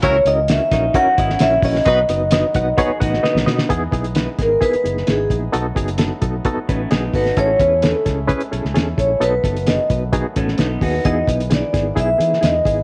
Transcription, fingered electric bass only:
X:1
M:4/4
L:1/16
Q:1/4=131
K:E
V:1 name="Fingered electric bass" clef=bass
C,,2 C,,4 ^A,,,2 z2 G,,,2 A,,,2 A,,,2 | B,,,2 F,,,4 B,,,2 z2 A,,,2 z B,,, B,,2 | E,,2 B,,,4 G,,,2 z2 F,,,2 G,,,2 ^A,,,2 | B,,,2 F,,,4 B,,,2 z2 A,,,2 B,,,2 G,,,2 |
A,,,2 E,,4 C,,3 z B,,, C,, E,,2 ^A,,,2 | B,,,2 F,,,4 B,,,4 A,,,2 B,,,2 D,,2 | E,,2 B,,,4 G,,,2 B,,,2 E,2 E,,2 G,,,2 |]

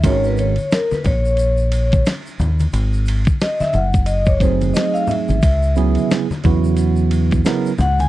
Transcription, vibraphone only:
X:1
M:4/4
L:1/16
Q:"Swing 16ths" 1/4=89
K:G#m
V:1 name="Vibraphone"
c B c2 A B c6 z4 | z4 d e f2 d c ^B2 d ^e =e2- | e4 z8 z2 f g |]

